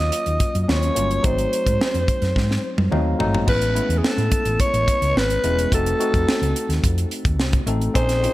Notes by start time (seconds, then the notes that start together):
Already playing: F#3 A#3 C#4 F4 D#5
0.12 closed hi-hat
0.26 D#2, closed hi-hat
0.40 kick, closed hi-hat
0.55 F#2, closed hi-hat
0.63 D#5
0.68 D#2 F#3 A#3 C#4 F4 C#5, snare
0.83 closed hi-hat
0.94 G1 F#3 A#3 C#4 F4, closed hi-hat
1.11 closed hi-hat
1.23 G#1 F#3 A3 C4 D#4 C5, kick, closed hi-hat
1.38 closed hi-hat
1.53 closed hi-hat
1.66 G#2, kick, closed hi-hat
1.81 snare
1.94 F2, closed hi-hat
2.08 kick, closed hi-hat
2.22 F#2, snare, closed hi-hat
2.36 G#2, kick, snare
2.51 snare
2.78 F#2, high tom
2.91 D#2 F#3 A3 C4 D#4 F5, mid tom
3.19 G#1 F#3 A3 C4 D#4, floor tom
3.35 floor tom
3.46 A1 G#3 B3 C#4 E4 B4, kick, crash
3.62 closed hi-hat
3.74 A3 B3 C#4 E4, closed hi-hat
3.89 E2, closed hi-hat
3.98 G#4
4.04 A4, muted fingered electric bass stroke, snare
4.18 A2, closed hi-hat
4.31 kick, closed hi-hat
4.45 A1, closed hi-hat
4.60 C#5, kick, closed hi-hat
4.74 A1, closed hi-hat
4.88 kick, closed hi-hat
5.02 C#2, closed hi-hat
5.15 G#1 B4, snare
5.30 closed hi-hat
5.44 E1 G#3 B3 C#4 E4, closed hi-hat
5.59 closed hi-hat
5.72 F1 A3 C4 D#4 F#4 A4, kick, closed hi-hat
5.86 closed hi-hat
5.99 A3 C4 D#4 F#4, closed hi-hat
6.14 F2, kick, closed hi-hat
6.29 snare
6.42 C#2, closed hi-hat
6.56 closed hi-hat
6.69 D#2, snare, closed hi-hat
6.83 F2, kick, closed hi-hat
6.98 closed hi-hat
7.11 closed hi-hat
7.25 D#2, kick, closed hi-hat
7.39 C2, snare
7.53 kick, closed hi-hat
7.66 A1 A3 C4 D#4 A4, closed hi-hat
7.81 closed hi-hat
7.94 A#1 C4 C#4 D#4 G#4 C5, kick, closed hi-hat
8.09 snare, closed hi-hat
8.22 C4 C#4 D#4 F4, closed hi-hat